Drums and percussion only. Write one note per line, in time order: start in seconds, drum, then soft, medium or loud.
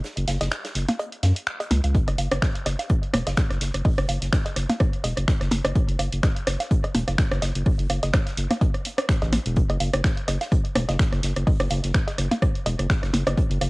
0.04 snare loud
0.04 closed hi-hat medium
0.17 closed hi-hat soft
0.28 snare loud
0.28 closed hi-hat medium
0.28 open hi-hat medium
0.28 low woodblock medium
0.41 snare medium
0.41 closed hi-hat medium
0.41 cowbell medium
0.51 finger snap medium
0.51 snare loud
0.51 closed hi-hat medium
0.65 snare loud
0.65 closed hi-hat soft
0.65 closed hi-hat medium
0.75 closed hi-hat medium
0.75 open hi-hat medium
0.89 snare soft
0.89 closed hi-hat medium
0.89 percussion blips medium
0.89 low woodblock medium
0.99 closed hi-hat medium
0.99 cowbell medium
1.12 closed hi-hat soft
1.23 snare loud
1.23 closed hi-hat medium
1.23 open hi-hat medium
1.23 low woodblock soft
1.36 closed hi-hat medium
1.47 finger snap medium
1.47 closed hi-hat medium
1.60 closed hi-hat soft
1.60 closed hi-hat medium
1.60 cowbell medium
1.71 closed hi-hat medium
1.71 open hi-hat medium
1.71 percussion blips medium
1.84 closed hi-hat medium
1.84 low woodblock soft
1.95 kick loud
1.95 closed hi-hat medium
2.08 cross-stick soft
2.08 closed hi-hat soft
2.08 cowbell medium
2.18 closed hi-hat medium
2.18 open hi-hat medium
2.18 low woodblock medium
2.31 cross-stick medium
2.31 closed hi-hat medium
2.42 finger snap medium
2.42 kick loud
2.42 snare loud
2.42 closed hi-hat medium
2.55 closed hi-hat soft
2.66 cross-stick soft
2.66 closed hi-hat medium
2.66 open hi-hat medium
2.66 cowbell medium
2.79 snare soft
2.79 closed hi-hat medium
2.79 low woodblock medium
2.89 kick loud
2.89 cross-stick soft
2.89 closed hi-hat medium
3.03 closed hi-hat soft
3.13 cross-stick medium
3.13 closed hi-hat medium
3.13 open hi-hat medium
3.13 percussion blips medium
3.27 snare medium
3.27 closed hi-hat medium
3.27 cowbell medium
3.27 low woodblock medium
3.37 finger snap medium
3.37 kick loud
3.37 snare loud
3.37 closed hi-hat medium
3.51 cross-stick soft
3.51 snare soft
3.51 closed hi-hat soft
3.61 snare medium
3.61 closed hi-hat medium
3.61 open hi-hat medium
3.74 cross-stick soft
3.74 closed hi-hat soft
3.85 kick loud
3.85 open hi-hat medium
3.85 cowbell medium
3.98 cross-stick medium
3.98 closed hi-hat soft
4.09 closed hi-hat medium
4.09 open hi-hat medium
4.09 low woodblock medium
4.22 snare soft
4.22 closed hi-hat medium
4.33 finger snap medium
4.33 kick loud
4.33 cross-stick soft
4.33 snare loud
4.33 closed hi-hat medium
4.46 snare soft
4.46 closed hi-hat soft
4.46 cowbell medium
4.56 cross-stick soft
4.56 closed hi-hat medium
4.56 open hi-hat medium
4.70 snare soft
4.70 closed hi-hat medium
4.70 percussion blips medium
4.70 low woodblock medium
4.80 kick loud
4.80 cross-stick medium
4.80 closed hi-hat medium
4.93 closed hi-hat soft
5.04 closed hi-hat medium
5.04 open hi-hat medium
5.04 cowbell medium
5.17 cross-stick soft
5.17 closed hi-hat medium
5.28 finger snap medium
5.28 kick loud
5.28 snare loud
5.28 closed hi-hat medium
5.41 cross-stick soft
5.41 snare soft
5.41 closed hi-hat soft
5.51 closed hi-hat medium
5.51 open hi-hat loud
5.51 percussion blips loud
5.65 cross-stick medium
5.65 closed hi-hat medium
5.65 cowbell medium
5.75 kick loud
5.75 closed hi-hat medium
5.89 closed hi-hat soft
5.99 cross-stick soft
5.99 closed hi-hat medium
5.99 open hi-hat medium
5.99 low woodblock medium
6.12 closed hi-hat medium
6.23 finger snap medium
6.23 kick loud
6.23 cross-stick soft
6.23 snare loud
6.23 closed hi-hat medium
6.23 cowbell medium
6.36 closed hi-hat soft
6.47 cross-stick medium
6.47 closed hi-hat medium
6.47 open hi-hat loud
6.60 snare soft
6.60 closed hi-hat medium
6.60 low woodblock medium
6.71 kick loud
6.71 closed hi-hat medium
6.84 cross-stick soft
6.84 closed hi-hat soft
6.84 cowbell medium
6.95 closed hi-hat medium
6.95 open hi-hat medium
6.95 percussion blips medium
7.08 cross-stick soft
7.08 snare medium
7.08 closed hi-hat soft
7.08 low woodblock medium
7.18 finger snap medium
7.18 kick loud
7.18 snare loud
7.18 closed hi-hat medium
7.32 cross-stick medium
7.32 snare soft
7.32 closed hi-hat soft
7.42 snare medium
7.42 closed hi-hat medium
7.42 open hi-hat medium
7.42 cowbell medium
7.55 closed hi-hat soft
7.66 kick loud
7.66 cross-stick soft
7.66 open hi-hat medium
7.79 closed hi-hat soft
7.90 cross-stick soft
7.90 closed hi-hat medium
7.90 open hi-hat medium
7.90 low woodblock medium
8.03 snare soft
8.03 closed hi-hat soft
8.03 cowbell medium
8.13 finger snap medium
8.13 kick loud
8.13 cross-stick medium
8.13 snare loud
8.13 closed hi-hat medium
8.27 snare soft
8.27 closed hi-hat soft
8.37 closed hi-hat medium
8.37 open hi-hat medium
8.51 cross-stick soft
8.51 snare soft
8.51 closed hi-hat soft
8.51 percussion blips medium
8.51 low woodblock medium
8.61 kick loud
8.61 closed hi-hat medium
8.61 cowbell medium
8.74 cross-stick soft
8.74 closed hi-hat soft
8.85 closed hi-hat medium
8.85 open hi-hat medium
8.98 cross-stick medium
8.98 closed hi-hat soft
9.09 finger snap medium
9.09 kick loud
9.09 snare loud
9.09 closed hi-hat medium
9.22 snare medium
9.22 closed hi-hat soft
9.22 cowbell medium
9.33 cross-stick soft
9.33 closed hi-hat medium
9.33 open hi-hat medium
9.33 percussion blips medium
9.46 closed hi-hat soft
9.56 kick loud
9.56 closed hi-hat medium
9.70 cross-stick soft
9.70 closed hi-hat soft
9.70 cowbell medium
9.80 closed hi-hat medium
9.80 open hi-hat medium
9.80 low woodblock medium
9.93 cross-stick medium
9.93 closed hi-hat soft
10.04 finger snap medium
10.04 kick loud
10.04 snare loud
10.04 closed hi-hat medium
10.17 closed hi-hat soft
10.28 cross-stick soft
10.28 closed hi-hat medium
10.28 open hi-hat medium
10.28 cowbell medium
10.41 snare medium
10.41 closed hi-hat soft
10.41 low woodblock medium
10.52 kick loud
10.52 cross-stick soft
10.52 closed hi-hat medium
10.65 closed hi-hat soft
10.75 cross-stick medium
10.75 closed hi-hat medium
10.75 open hi-hat medium
10.75 percussion blips medium
10.89 snare medium
10.89 closed hi-hat soft
10.89 cowbell medium
10.89 low woodblock medium
10.99 finger snap medium
10.99 kick loud
10.99 snare loud
10.99 closed hi-hat medium
11.12 cross-stick soft
11.12 snare soft
11.12 closed hi-hat soft
11.23 snare soft
11.23 closed hi-hat medium
11.23 open hi-hat medium
11.36 cross-stick soft
11.36 closed hi-hat soft
11.47 kick loud
11.47 open hi-hat medium
11.47 cowbell medium
11.60 cross-stick medium
11.60 closed hi-hat soft
11.70 closed hi-hat medium
11.70 open hi-hat medium
11.70 low woodblock medium
11.84 snare soft
11.84 closed hi-hat medium
11.94 finger snap medium
11.94 kick loud
11.94 cross-stick soft
11.94 snare loud
11.94 closed hi-hat medium
12.07 snare medium
12.07 closed hi-hat soft
12.07 cowbell medium
12.18 cross-stick soft
12.18 closed hi-hat medium
12.18 open hi-hat medium
12.31 snare soft
12.31 closed hi-hat medium
12.31 percussion blips medium
12.31 low woodblock medium
12.42 kick loud
12.42 cross-stick medium
12.42 closed hi-hat medium
12.55 closed hi-hat soft
12.66 closed hi-hat medium
12.66 open hi-hat medium
12.66 cowbell medium
12.79 cross-stick soft
12.79 closed hi-hat medium
12.90 finger snap medium
12.90 kick loud
12.90 snare loud
12.90 closed hi-hat medium
13.03 cross-stick soft
13.03 snare soft
13.03 closed hi-hat soft
13.13 closed hi-hat medium
13.13 open hi-hat medium
13.13 percussion blips medium
13.27 cross-stick medium
13.27 closed hi-hat medium
13.27 cowbell medium
13.37 kick loud
13.37 closed hi-hat medium
13.51 closed hi-hat soft
13.61 cross-stick soft
13.61 closed hi-hat medium
13.61 open hi-hat medium
13.61 low woodblock medium